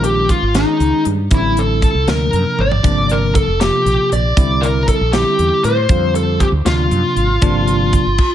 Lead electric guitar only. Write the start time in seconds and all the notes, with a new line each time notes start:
0.04 G4
0.30 F4
0.56 D#4
1.35 E4
1.59 A4
2.09 A#4
2.60 D5
3.11 A#4
3.35 A4
3.61 G4
4.13 D5
4.62 A#4
4.88 A4
5.13 G4
5.65 C5
6.16 A4
6.40 G4
6.66 F4